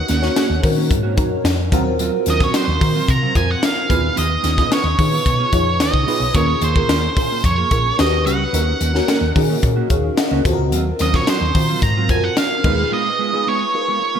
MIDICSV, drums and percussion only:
0, 0, Header, 1, 2, 480
1, 0, Start_track
1, 0, Tempo, 545951
1, 1750, Time_signature, 4, 2, 24, 8
1, 12483, End_track
2, 0, Start_track
2, 0, Title_t, "Drums"
2, 74, Note_on_c, 9, 42, 80
2, 83, Note_on_c, 9, 38, 36
2, 162, Note_off_c, 9, 42, 0
2, 171, Note_off_c, 9, 38, 0
2, 198, Note_on_c, 9, 38, 39
2, 286, Note_off_c, 9, 38, 0
2, 320, Note_on_c, 9, 38, 98
2, 320, Note_on_c, 9, 42, 91
2, 408, Note_off_c, 9, 38, 0
2, 408, Note_off_c, 9, 42, 0
2, 558, Note_on_c, 9, 36, 104
2, 561, Note_on_c, 9, 46, 84
2, 646, Note_off_c, 9, 36, 0
2, 649, Note_off_c, 9, 46, 0
2, 797, Note_on_c, 9, 36, 98
2, 800, Note_on_c, 9, 42, 84
2, 885, Note_off_c, 9, 36, 0
2, 888, Note_off_c, 9, 42, 0
2, 1032, Note_on_c, 9, 42, 65
2, 1034, Note_on_c, 9, 36, 108
2, 1120, Note_off_c, 9, 42, 0
2, 1122, Note_off_c, 9, 36, 0
2, 1274, Note_on_c, 9, 38, 115
2, 1275, Note_on_c, 9, 42, 88
2, 1362, Note_off_c, 9, 38, 0
2, 1363, Note_off_c, 9, 42, 0
2, 1514, Note_on_c, 9, 36, 111
2, 1517, Note_on_c, 9, 42, 88
2, 1601, Note_off_c, 9, 36, 0
2, 1605, Note_off_c, 9, 42, 0
2, 1753, Note_on_c, 9, 42, 78
2, 1841, Note_off_c, 9, 42, 0
2, 1987, Note_on_c, 9, 42, 69
2, 1996, Note_on_c, 9, 38, 37
2, 2075, Note_off_c, 9, 42, 0
2, 2084, Note_off_c, 9, 38, 0
2, 2114, Note_on_c, 9, 36, 97
2, 2115, Note_on_c, 9, 38, 38
2, 2202, Note_off_c, 9, 36, 0
2, 2203, Note_off_c, 9, 38, 0
2, 2232, Note_on_c, 9, 42, 103
2, 2233, Note_on_c, 9, 38, 106
2, 2320, Note_off_c, 9, 42, 0
2, 2321, Note_off_c, 9, 38, 0
2, 2474, Note_on_c, 9, 36, 112
2, 2477, Note_on_c, 9, 46, 85
2, 2561, Note_off_c, 9, 36, 0
2, 2565, Note_off_c, 9, 46, 0
2, 2712, Note_on_c, 9, 36, 105
2, 2718, Note_on_c, 9, 42, 91
2, 2800, Note_off_c, 9, 36, 0
2, 2806, Note_off_c, 9, 42, 0
2, 2949, Note_on_c, 9, 36, 100
2, 2949, Note_on_c, 9, 42, 72
2, 3037, Note_off_c, 9, 36, 0
2, 3037, Note_off_c, 9, 42, 0
2, 3190, Note_on_c, 9, 38, 113
2, 3191, Note_on_c, 9, 42, 94
2, 3278, Note_off_c, 9, 38, 0
2, 3279, Note_off_c, 9, 42, 0
2, 3428, Note_on_c, 9, 36, 106
2, 3435, Note_on_c, 9, 42, 83
2, 3516, Note_off_c, 9, 36, 0
2, 3523, Note_off_c, 9, 42, 0
2, 3669, Note_on_c, 9, 42, 88
2, 3757, Note_off_c, 9, 42, 0
2, 3903, Note_on_c, 9, 42, 74
2, 3912, Note_on_c, 9, 38, 34
2, 3990, Note_off_c, 9, 42, 0
2, 4000, Note_off_c, 9, 38, 0
2, 4027, Note_on_c, 9, 36, 94
2, 4028, Note_on_c, 9, 38, 38
2, 4115, Note_off_c, 9, 36, 0
2, 4115, Note_off_c, 9, 38, 0
2, 4147, Note_on_c, 9, 42, 92
2, 4148, Note_on_c, 9, 38, 110
2, 4235, Note_off_c, 9, 38, 0
2, 4235, Note_off_c, 9, 42, 0
2, 4385, Note_on_c, 9, 36, 105
2, 4390, Note_on_c, 9, 46, 87
2, 4473, Note_off_c, 9, 36, 0
2, 4478, Note_off_c, 9, 46, 0
2, 4624, Note_on_c, 9, 36, 98
2, 4629, Note_on_c, 9, 42, 89
2, 4712, Note_off_c, 9, 36, 0
2, 4717, Note_off_c, 9, 42, 0
2, 4858, Note_on_c, 9, 42, 64
2, 4860, Note_on_c, 9, 36, 94
2, 4946, Note_off_c, 9, 42, 0
2, 4948, Note_off_c, 9, 36, 0
2, 5101, Note_on_c, 9, 38, 113
2, 5102, Note_on_c, 9, 42, 100
2, 5188, Note_off_c, 9, 38, 0
2, 5190, Note_off_c, 9, 42, 0
2, 5219, Note_on_c, 9, 36, 87
2, 5307, Note_off_c, 9, 36, 0
2, 5345, Note_on_c, 9, 46, 85
2, 5433, Note_off_c, 9, 46, 0
2, 5579, Note_on_c, 9, 36, 116
2, 5582, Note_on_c, 9, 42, 84
2, 5667, Note_off_c, 9, 36, 0
2, 5670, Note_off_c, 9, 42, 0
2, 5816, Note_on_c, 9, 42, 73
2, 5904, Note_off_c, 9, 42, 0
2, 5941, Note_on_c, 9, 36, 93
2, 6029, Note_off_c, 9, 36, 0
2, 6060, Note_on_c, 9, 38, 114
2, 6060, Note_on_c, 9, 42, 100
2, 6148, Note_off_c, 9, 38, 0
2, 6148, Note_off_c, 9, 42, 0
2, 6301, Note_on_c, 9, 36, 112
2, 6304, Note_on_c, 9, 46, 81
2, 6389, Note_off_c, 9, 36, 0
2, 6392, Note_off_c, 9, 46, 0
2, 6541, Note_on_c, 9, 36, 100
2, 6544, Note_on_c, 9, 42, 83
2, 6629, Note_off_c, 9, 36, 0
2, 6632, Note_off_c, 9, 42, 0
2, 6778, Note_on_c, 9, 42, 74
2, 6780, Note_on_c, 9, 36, 97
2, 6866, Note_off_c, 9, 42, 0
2, 6868, Note_off_c, 9, 36, 0
2, 7024, Note_on_c, 9, 38, 121
2, 7026, Note_on_c, 9, 42, 90
2, 7112, Note_off_c, 9, 38, 0
2, 7114, Note_off_c, 9, 42, 0
2, 7270, Note_on_c, 9, 42, 82
2, 7358, Note_off_c, 9, 42, 0
2, 7507, Note_on_c, 9, 42, 85
2, 7595, Note_off_c, 9, 42, 0
2, 7743, Note_on_c, 9, 42, 76
2, 7831, Note_off_c, 9, 42, 0
2, 7870, Note_on_c, 9, 38, 37
2, 7958, Note_off_c, 9, 38, 0
2, 7986, Note_on_c, 9, 38, 106
2, 7986, Note_on_c, 9, 42, 88
2, 8074, Note_off_c, 9, 38, 0
2, 8074, Note_off_c, 9, 42, 0
2, 8228, Note_on_c, 9, 36, 108
2, 8229, Note_on_c, 9, 46, 85
2, 8316, Note_off_c, 9, 36, 0
2, 8317, Note_off_c, 9, 46, 0
2, 8467, Note_on_c, 9, 36, 98
2, 8468, Note_on_c, 9, 42, 87
2, 8555, Note_off_c, 9, 36, 0
2, 8556, Note_off_c, 9, 42, 0
2, 8703, Note_on_c, 9, 42, 67
2, 8706, Note_on_c, 9, 36, 95
2, 8791, Note_off_c, 9, 42, 0
2, 8794, Note_off_c, 9, 36, 0
2, 8946, Note_on_c, 9, 38, 118
2, 8947, Note_on_c, 9, 42, 96
2, 9034, Note_off_c, 9, 38, 0
2, 9035, Note_off_c, 9, 42, 0
2, 9189, Note_on_c, 9, 36, 106
2, 9192, Note_on_c, 9, 42, 90
2, 9277, Note_off_c, 9, 36, 0
2, 9280, Note_off_c, 9, 42, 0
2, 9427, Note_on_c, 9, 42, 79
2, 9515, Note_off_c, 9, 42, 0
2, 9664, Note_on_c, 9, 42, 78
2, 9673, Note_on_c, 9, 38, 38
2, 9752, Note_off_c, 9, 42, 0
2, 9761, Note_off_c, 9, 38, 0
2, 9794, Note_on_c, 9, 36, 92
2, 9796, Note_on_c, 9, 38, 41
2, 9882, Note_off_c, 9, 36, 0
2, 9884, Note_off_c, 9, 38, 0
2, 9911, Note_on_c, 9, 38, 110
2, 9911, Note_on_c, 9, 42, 94
2, 9999, Note_off_c, 9, 38, 0
2, 9999, Note_off_c, 9, 42, 0
2, 10154, Note_on_c, 9, 36, 112
2, 10158, Note_on_c, 9, 46, 82
2, 10242, Note_off_c, 9, 36, 0
2, 10246, Note_off_c, 9, 46, 0
2, 10394, Note_on_c, 9, 36, 99
2, 10396, Note_on_c, 9, 42, 86
2, 10481, Note_off_c, 9, 36, 0
2, 10484, Note_off_c, 9, 42, 0
2, 10630, Note_on_c, 9, 42, 72
2, 10632, Note_on_c, 9, 36, 97
2, 10718, Note_off_c, 9, 42, 0
2, 10720, Note_off_c, 9, 36, 0
2, 10873, Note_on_c, 9, 38, 113
2, 10875, Note_on_c, 9, 42, 98
2, 10961, Note_off_c, 9, 38, 0
2, 10963, Note_off_c, 9, 42, 0
2, 11116, Note_on_c, 9, 36, 113
2, 11116, Note_on_c, 9, 49, 70
2, 11204, Note_off_c, 9, 36, 0
2, 11204, Note_off_c, 9, 49, 0
2, 12483, End_track
0, 0, End_of_file